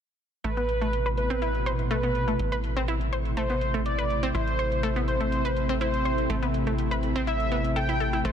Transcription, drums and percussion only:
0.44 closed hi-hat
0.57 closed hi-hat
0.69 closed hi-hat
0.82 closed hi-hat
0.93 closed hi-hat
1.06 closed hi-hat
1.17 closed hi-hat
1.30 closed hi-hat
1.42 closed hi-hat
1.55 closed hi-hat
1.66 closed hi-hat
1.79 closed hi-hat
1.91 closed hi-hat
2.03 closed hi-hat
2.15 closed hi-hat
2.28 closed hi-hat
2.39 closed hi-hat
2.52 closed hi-hat
2.64 closed hi-hat
2.77 closed hi-hat
2.88 closed hi-hat
3.01 closed hi-hat
3.13 closed hi-hat
3.25 closed hi-hat
3.37 closed hi-hat
3.50 closed hi-hat
3.61 closed hi-hat
3.74 closed hi-hat
3.86 closed hi-hat
3.99 closed hi-hat
4.10 closed hi-hat
4.23 closed hi-hat
4.35 closed hi-hat
4.47 closed hi-hat
4.59 closed hi-hat
4.72 closed hi-hat
4.83 closed hi-hat
4.96 closed hi-hat
5.08 closed hi-hat
5.21 closed hi-hat
5.32 closed hi-hat
5.45 closed hi-hat
5.57 closed hi-hat
5.69 closed hi-hat
5.81 closed hi-hat
5.94 closed hi-hat
6.05 closed hi-hat
6.18 closed hi-hat
6.30 closed hi-hat
6.43 closed hi-hat
6.54 closed hi-hat
6.67 closed hi-hat
6.78 closed hi-hat
6.91 closed hi-hat
7.03 closed hi-hat
7.16 closed hi-hat
7.27 closed hi-hat
7.40 closed hi-hat
7.52 closed hi-hat
7.64 closed hi-hat
7.76 closed hi-hat
7.89 closed hi-hat
8.00 closed hi-hat
8.13 closed hi-hat
8.25 closed hi-hat

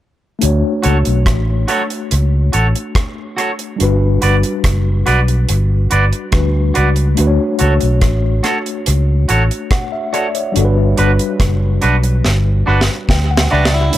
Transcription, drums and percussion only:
0.42 closed hi-hat
0.83 closed hi-hat
1.05 closed hi-hat
1.26 kick, cross-stick, closed hi-hat
1.68 closed hi-hat
1.90 closed hi-hat
2.11 closed hi-hat
2.53 closed hi-hat
2.75 closed hi-hat
2.95 kick, cross-stick, closed hi-hat
3.38 closed hi-hat
3.59 closed hi-hat
3.80 closed hi-hat
4.22 closed hi-hat
4.43 closed hi-hat
4.64 kick, cross-stick, closed hi-hat
5.06 closed hi-hat
5.28 closed hi-hat
5.49 closed hi-hat
5.91 closed hi-hat
6.13 closed hi-hat
6.32 kick, cross-stick, closed hi-hat
6.75 closed hi-hat
6.96 closed hi-hat
7.17 closed hi-hat
7.59 closed hi-hat
7.81 closed hi-hat
8.01 kick, cross-stick, closed hi-hat
8.44 cross-stick, closed hi-hat
8.66 closed hi-hat
8.86 closed hi-hat
9.29 closed hi-hat
9.51 closed hi-hat
9.71 kick, cross-stick, closed hi-hat
10.14 closed hi-hat
10.35 closed hi-hat
10.56 closed hi-hat
10.98 closed hi-hat
11.19 closed hi-hat
11.40 kick, cross-stick, closed hi-hat
11.82 closed hi-hat
12.04 closed hi-hat
12.25 snare
12.81 snare
13.09 kick, snare
13.37 snare
13.65 snare
13.93 closed hi-hat

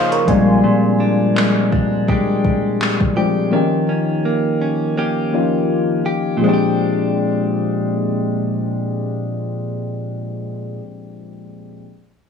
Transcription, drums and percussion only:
0.12 closed hi-hat
0.28 kick, closed hi-hat
1.37 clap
1.72 kick
2.08 kick
2.45 kick
2.82 clap
3.01 kick

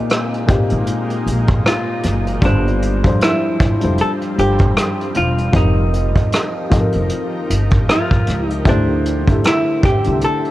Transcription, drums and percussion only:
0.10 cross-stick, closed hi-hat
0.34 closed hi-hat
0.49 kick, closed hi-hat
0.70 closed hi-hat
0.87 closed hi-hat
1.10 closed hi-hat
1.27 closed hi-hat
1.47 kick, closed hi-hat
1.66 cross-stick, closed hi-hat
2.03 cross-stick, closed hi-hat
2.27 closed hi-hat
2.42 kick, closed hi-hat
2.68 closed hi-hat
2.82 closed hi-hat
3.04 kick, closed hi-hat
3.21 cross-stick, closed hi-hat
3.60 kick, closed hi-hat
3.81 closed hi-hat
3.98 closed hi-hat
4.21 closed hi-hat
4.38 closed hi-hat
4.58 kick, closed hi-hat
4.77 cross-stick, closed hi-hat
5.01 closed hi-hat
5.15 closed hi-hat
5.38 closed hi-hat
5.53 kick, closed hi-hat
5.94 closed hi-hat
6.16 kick, closed hi-hat
6.32 cross-stick, closed hi-hat
6.72 kick, closed hi-hat
6.92 closed hi-hat
7.09 closed hi-hat
7.50 closed hi-hat
7.70 kick, closed hi-hat
7.89 cross-stick, closed hi-hat
8.11 kick, closed hi-hat
8.27 cross-stick, closed hi-hat
8.50 closed hi-hat
8.65 kick, closed hi-hat
9.05 closed hi-hat
9.27 kick, closed hi-hat
9.44 cross-stick, closed hi-hat
9.83 kick, closed hi-hat
10.04 closed hi-hat
10.21 closed hi-hat
10.45 closed hi-hat

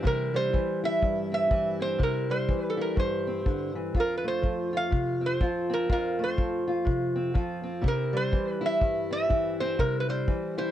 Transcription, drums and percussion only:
0.05 kick
0.54 kick
1.03 kick
1.51 kick
2.00 kick
2.49 kick
2.97 kick
3.46 kick
3.95 kick
4.44 kick
4.92 kick
5.41 kick
5.90 kick
6.38 kick
6.87 kick
7.35 kick
7.84 kick
8.33 kick
8.81 kick
9.30 kick
9.79 kick
10.28 kick

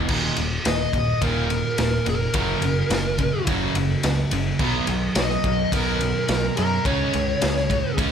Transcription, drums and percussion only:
0.08 kick, crash
0.36 ride
0.65 snare, ride
0.93 kick, ride
1.22 kick, ride
1.50 ride
1.78 snare, ride
2.06 ride
2.34 kick, ride
2.62 ride
2.90 snare, ride
3.18 kick, ride
3.47 kick, ride
3.75 ride
4.03 snare, ride
4.31 ride
4.59 kick, crash
4.87 ride
5.15 snare, ride
5.30 snare
5.44 kick, ride
5.72 kick, ride
6.01 ride
6.28 snare, ride
6.57 ride
6.85 kick, ride
7.13 ride
7.42 snare, ride
7.56 snare
7.70 kick, ride
7.98 kick, ride

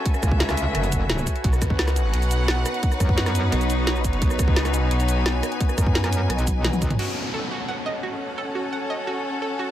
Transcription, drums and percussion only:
0.06 kick, closed hi-hat
0.14 cross-stick, shaker
0.23 kick, cross-stick, closed hi-hat, shaker
0.31 kick
0.40 snare, closed hi-hat
0.49 cross-stick, snare, closed hi-hat, shaker
0.57 closed hi-hat, shaker
0.75 cross-stick, closed hi-hat
0.84 closed hi-hat, shaker
0.92 kick, closed hi-hat, shaker
1.10 snare, closed hi-hat
1.18 shaker
1.27 kick, closed hi-hat, shaker
1.36 closed hi-hat
1.44 kick, closed hi-hat
1.53 cross-stick, shaker
1.62 kick, cross-stick, closed hi-hat, shaker
1.70 kick
1.79 snare, closed hi-hat
1.88 cross-stick, snare, closed hi-hat, shaker
1.96 closed hi-hat, shaker
2.14 closed hi-hat
2.22 closed hi-hat, shaker
2.31 closed hi-hat, shaker
2.48 snare, closed hi-hat
2.66 cross-stick, closed hi-hat, shaker
2.74 closed hi-hat
2.83 kick, closed hi-hat
2.92 cross-stick, shaker
3.00 kick, cross-stick, closed hi-hat, shaker
3.09 kick
3.18 snare, closed hi-hat
3.26 cross-stick, snare, closed hi-hat, shaker
3.35 closed hi-hat, shaker
3.52 cross-stick, closed hi-hat
3.61 closed hi-hat, shaker
3.70 closed hi-hat, shaker
3.87 snare, closed hi-hat
3.96 shaker
4.04 kick, closed hi-hat, shaker
4.13 closed hi-hat
4.22 kick, closed hi-hat
4.30 cross-stick, shaker
4.39 kick, cross-stick, closed hi-hat, shaker
4.48 kick
4.56 snare, closed hi-hat
4.65 cross-stick, snare, closed hi-hat, shaker
4.74 closed hi-hat, shaker
4.91 closed hi-hat
5.00 closed hi-hat, shaker
5.08 closed hi-hat, shaker
5.26 snare, closed hi-hat
5.43 cross-stick, closed hi-hat, shaker
5.52 closed hi-hat
5.60 kick, closed hi-hat
5.69 cross-stick, shaker
5.78 kick, cross-stick, closed hi-hat, shaker
5.86 kick
5.95 snare, closed hi-hat
6.04 cross-stick, snare, closed hi-hat, shaker
6.13 closed hi-hat, shaker
6.30 cross-stick, closed hi-hat
6.39 closed hi-hat, shaker
6.47 kick, closed hi-hat, shaker
6.64 snare, closed hi-hat, high tom
6.73 high tom, shaker
6.82 kick, closed hi-hat, shaker
6.90 closed hi-hat, mid tom
6.99 crash

